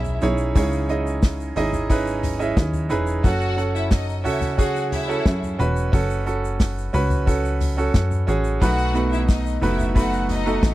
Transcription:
Already playing: analog synth bass B1, grand piano C#4 D#4 E4 G#4 D#5 E5, violin section E4 E5
0.05 floor tom, shaker
0.21 analog synth bass B1, grand piano C#4 D#4 E4 G#4 C#5, hi-hat pedal, open hi-hat, shaker
0.38 shaker
0.55 analog synth bass C#2, grand piano C#3 C#4 D#4 E4 G#4 C#5, kick, hi-hat pedal, open hi-hat, shaker
0.72 shaker
0.89 grand piano C#4 D#4 E4 G#4 D#5, hi-hat pedal, open hi-hat
1.07 shaker
1.22 kick, snare, hi-hat pedal, open hi-hat, shaker
1.40 shaker
1.56 analog synth bass G#1, grand piano C#4 D#4 E4 G#4 D#5, floor tom, hi-hat pedal, open hi-hat, shaker
1.73 floor tom, shaker
1.90 grand piano C#4 D#4 E4 G#4 B4, kick, hi-hat pedal, open hi-hat, shaker
2.07 shaker
2.23 floor tom, hi-hat pedal, open hi-hat, shaker
2.39 grand piano C#4 E4 G#4 D#5 E5, shaker
2.57 analog synth bass D#2, kick, snare, hi-hat pedal, open hi-hat, shaker
2.73 floor tom, shaker
2.89 analog synth bass E1, grand piano C#4 D#4 E4 G#4 B4, hi-hat pedal, open hi-hat, shaker
3.07 shaker
3.23 analog synth bass F#1, grand piano C#4 F#4 A4, violin section F#4 F#5, kick, hi-hat pedal, open hi-hat, shaker
3.41 shaker
3.56 grand piano C#4 F#4 A4, hi-hat pedal, open hi-hat
3.75 violin section E4 E5, shaker
3.91 violin section D#4 D#5, kick, snare, hi-hat pedal, open hi-hat, shaker
4.09 shaker
4.24 analog synth bass C#2, grand piano C#4 F#4 A4, violin section E4 E5, floor tom, hi-hat pedal, open hi-hat, shaker
4.41 floor tom, shaker
4.57 grand piano C#4 F#4 G#4, violin section F#4 F#5, kick, hi-hat pedal, open hi-hat, shaker
4.76 shaker
4.91 violin section E4 E5, floor tom, hi-hat pedal, open hi-hat, shaker
5.08 grand piano C#4 F#4 A4, shaker
5.26 analog synth bass F#2, kick, snare, hi-hat pedal, open hi-hat, shaker
5.43 floor tom, shaker
5.59 analog synth bass E1, grand piano C#4 F#4 B4, hi-hat pedal, open hi-hat, shaker
5.76 shaker
5.92 analog synth bass F#1, grand piano C#4 F#4 A4, kick, hi-hat pedal, open hi-hat, shaker
6.10 shaker
6.26 grand piano C#4 F#4 A4, hi-hat pedal, open hi-hat, shaker
6.45 shaker
6.60 kick, snare, hi-hat pedal, open hi-hat, shaker
6.78 shaker
6.93 analog synth bass C#2, grand piano C#4 F#4 B4, floor tom, hi-hat pedal, open hi-hat, shaker
7.10 floor tom, shaker
7.26 grand piano C#4 F#4 A4, kick, hi-hat pedal, open hi-hat, shaker
7.45 shaker
7.61 floor tom, hi-hat pedal, open hi-hat, shaker
7.77 grand piano C#4 F#4 A4, shaker
7.94 analog synth bass F#2, kick, snare, hi-hat pedal, open hi-hat, shaker
8.11 floor tom, shaker
8.27 analog synth bass A1, grand piano C#4 F#4 G#4, hi-hat pedal, open hi-hat, shaker
8.44 shaker
8.61 analog synth bass B1, grand piano B2 A3 B3 D#4 F#4 B4, violin section F#4 F#5, kick, hi-hat pedal, open hi-hat, shaker
8.79 shaker
8.94 grand piano A3 B3 D#4 F#4 B4, hi-hat pedal, open hi-hat
9.12 violin section E4 E5, shaker
9.28 violin section D#4 D#5, kick, snare, hi-hat pedal, open hi-hat, shaker
9.46 shaker
9.61 analog synth bass F#1, grand piano A3 B3 D#4 F#4 B4, violin section E4 E5, floor tom, hi-hat pedal, open hi-hat, shaker
9.79 floor tom, shaker
9.95 grand piano A3 B3 D#4 F#4 B4, violin section F#4 F#5, kick, hi-hat pedal, open hi-hat, shaker
10.13 shaker
10.29 violin section D#4 D#5, floor tom, hi-hat pedal, open hi-hat, shaker
10.45 grand piano A3 B3 D#4 F#4 A4, shaker
10.63 analog synth bass A1, kick, snare, hi-hat pedal, open hi-hat, shaker

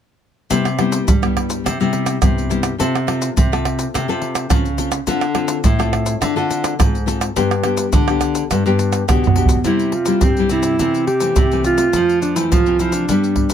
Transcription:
0.50 nylon-string guitar C3 G3 B3 E4, pandeiro, maracas, surdo
0.65 pandeiro, tamborim, maracas
0.78 nylon-string guitar G3 B3 E4, pandeiro, tamborim
0.92 pandeiro, maracas
1.07 nylon-string guitar G2 G3, pandeiro, maracas, surdo
1.22 nylon-string guitar G3 B3 E4, pandeiro, tamborim, maracas
1.37 pandeiro, tamborim
1.50 pandeiro, maracas
1.64 nylon-string guitar C3, pandeiro, tamborim, maracas, surdo
1.80 nylon-string guitar C3 G3 B3 E4, pandeiro, maracas
1.93 pandeiro
2.06 pandeiro, tamborim, maracas
2.22 nylon-string guitar G2 C3 G3 B3 E4, pandeiro, tamborim, maracas, surdo
2.38 pandeiro, maracas
2.49 nylon-string guitar G3 B3 E4, pandeiro, maracas
2.63 pandeiro, tamborim, maracas
2.78 nylon-string guitar C3 C4 F4 A4, pandeiro, maracas, surdo
2.95 pandeiro, tamborim, maracas
3.07 nylon-string guitar C4 F4 A4, pandeiro, tamborim
3.22 pandeiro, maracas
3.36 nylon-string guitar C3, pandeiro, maracas, surdo
3.52 nylon-string guitar C4 F4 A4, pandeiro, tamborim, maracas
3.65 pandeiro, tamborim
3.79 pandeiro, maracas
3.94 nylon-string guitar C3, pandeiro, tamborim, maracas, surdo
4.08 nylon-string guitar C3 C4 F4 A4, pandeiro, maracas
4.22 pandeiro
4.35 pandeiro, tamborim, maracas
4.50 nylon-string guitar C#3 C4 F4 A4, pandeiro, tamborim, maracas, surdo
4.65 pandeiro, maracas
4.78 nylon-string guitar C4 F4 A4, pandeiro, maracas
4.92 pandeiro, tamborim, maracas
5.07 nylon-string guitar D3 C4 F4 A4, pandeiro, maracas, surdo
5.21 pandeiro, tamborim, maracas
5.34 nylon-string guitar C4 F4 A4, pandeiro, tamborim
5.48 pandeiro, maracas
5.64 nylon-string guitar A2, pandeiro, maracas, surdo
5.79 nylon-string guitar C4 F4 A4, pandeiro, tamborim, maracas
5.93 pandeiro, tamborim
6.06 pandeiro, maracas
6.21 nylon-string guitar D3, pandeiro, tamborim, maracas, surdo
6.36 nylon-string guitar D3 C4 F4 A4, pandeiro, maracas
6.50 pandeiro, maracas
6.64 pandeiro, tamborim, maracas
6.79 nylon-string guitar G#2 C4 F4 A4, pandeiro, tamborim, maracas, surdo
6.95 pandeiro, maracas
7.06 nylon-string guitar C4 F4 A4, pandeiro, maracas
7.21 pandeiro, tamborim, maracas
7.36 nylon-string guitar G2 G3 B3 D4 G4, pandeiro, maracas, surdo
7.51 pandeiro, tamborim, maracas
7.63 nylon-string guitar B3 D4 G4, pandeiro, tamborim
7.77 pandeiro, maracas
7.93 nylon-string guitar D3, pandeiro, maracas, surdo
8.08 nylon-string guitar B3 D4 G4, pandeiro, tamborim, maracas
8.21 pandeiro, tamborim, maracas
8.35 pandeiro, maracas
8.51 nylon-string guitar G2 G3, pandeiro, tamborim, maracas, surdo
8.66 nylon-string guitar G2 B3 D4 G4, pandeiro, maracas
8.79 pandeiro, maracas
8.92 pandeiro, tamborim, maracas
9.08 nylon-string guitar B2 D3 B3 D4 G4, pandeiro, tamborim, maracas, surdo
9.24 surdo, pandeiro, maracas
9.36 nylon-string guitar B3 D4 G4, pandeiro
9.45 pandeiro, maracas, surdo
9.55 surdo
9.64 nylon-string guitar C3 G3 C4 E4, alto saxophone E4, pandeiro, maracas, surdo
9.79 pandeiro, maracas
9.92 alto saxophone F4, pandeiro
10.06 nylon-string guitar G3 C4 E4, pandeiro, maracas
10.21 nylon-string guitar G2 C4, alto saxophone G4, pandeiro, maracas, surdo
10.37 nylon-string guitar G3 C4 E4, pandeiro, maracas
10.49 nylon-string guitar C3, alto saxophone E4, pandeiro, maracas
10.63 pandeiro, maracas
10.79 nylon-string guitar C3 E3 A3 C4, pandeiro, maracas, surdo
10.94 pandeiro, maracas
11.07 alto saxophone G4, pandeiro
11.20 nylon-string guitar E3 A3 C4, pandeiro, maracas
11.36 nylon-string guitar C3, pandeiro, maracas, surdo
11.51 nylon-string guitar E3 A3 C4, pandeiro, maracas
11.64 alto saxophone F4, pandeiro, maracas
11.77 nylon-string guitar A3 C4, pandeiro, maracas
11.93 nylon-string guitar F2 F3, pandeiro, maracas, surdo
12.09 pandeiro, maracas
12.22 alto saxophone D4, pandeiro, maracas
12.36 nylon-string guitar E3 A3 C4, alto saxophone E4, pandeiro, maracas
12.52 nylon-string guitar C3 F3, alto saxophone F4, pandeiro, maracas, surdo
12.66 nylon-string guitar E3 A3 C4, pandeiro, maracas
12.79 nylon-string guitar F3, alto saxophone E4, pandeiro, maracas
12.92 alto saxophone D4, pandeiro, maracas
13.09 nylon-string guitar G2 G3 B3 D4, pandeiro, maracas, surdo
13.24 pandeiro, maracas
13.36 pandeiro, surdo
13.50 pandeiro, maracas

